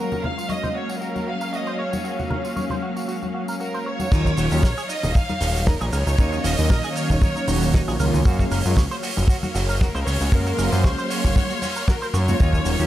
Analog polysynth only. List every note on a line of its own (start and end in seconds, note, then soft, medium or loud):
0.00 4.08 F#3 medium
0.00 4.09 G#3 medium
0.00 4.09 A#3 medium
0.00 4.09 C#4 medium
0.00 4.09 F5 medium
4.11 4.48 D#3 loud
4.11 4.48 F#3 medium
4.11 4.48 A#3 medium
4.11 4.48 C#4 medium
4.11 4.49 F4 loud
4.51 4.60 D#3 loud
4.51 4.60 F#3 medium
4.51 4.60 A#3 medium
4.51 4.60 C#4 medium
4.51 4.60 F4 loud
6.18 6.55 D#3 medium
6.18 6.55 F#3 medium
6.18 6.55 A#3 medium
6.18 6.55 C#4 medium
6.18 6.56 F5 loud
6.57 7.45 D#3 medium
6.57 7.45 F#3 medium
6.57 7.45 A#3 medium
6.57 7.45 C#4 medium
6.57 7.46 F5 medium
7.48 7.97 D#3 medium
7.48 7.97 F#3 medium
7.48 7.97 A#3 medium
7.48 7.97 C#4 medium
7.48 7.97 F#4 loud
7.99 8.22 D#3 loud
7.99 8.23 F#3 medium
7.99 8.23 A#3 medium
7.99 8.23 C#4 medium
7.99 8.23 F4 loud
8.25 8.62 F#3 loud
8.25 8.62 G#3 medium
8.25 8.62 A#3 medium
8.25 8.62 C#4 medium
8.25 8.62 F5 loud
8.65 8.73 F#3 loud
8.65 8.74 G#3 medium
8.65 8.74 A#3 medium
8.65 8.74 C#4 medium
8.65 8.74 F4 loud
10.32 10.69 F#3 medium
10.32 10.69 G#3 medium
10.32 10.69 A#3 medium
10.32 10.69 C#4 medium
10.32 10.70 F5 loud
10.72 11.59 F#3 medium
10.72 11.59 G#3 medium
10.72 11.59 A#3 medium
10.72 11.59 C#4 medium
10.72 11.60 F5 medium
12.27 12.36 F#3 loud
12.27 12.36 G#3 medium
12.27 12.37 A#3 medium
12.27 12.37 C#4 medium
12.27 12.37 F4 loud
12.39 12.76 D#3 loud
12.39 12.76 F#3 medium
12.39 12.76 A#3 medium
12.39 12.76 C#4 medium
12.39 12.76 F4 loud
12.79 12.87 D#3 loud
12.79 12.87 F#3 medium
12.79 12.87 A#3 medium
12.79 12.87 C#4 medium
12.79 12.87 F4 loud